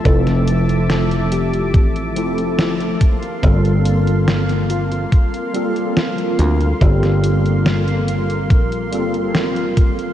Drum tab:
HH |xxxxxxxxxxxxxxxx|xxxxxxxxxxxxxxxx|xxxxxxxxxxxxxxxx|
SD |-o--o-------o---|----o-------o---|-o--o-------o---|
BD |o-------o-----o-|o-------o-------|o-------o-----o-|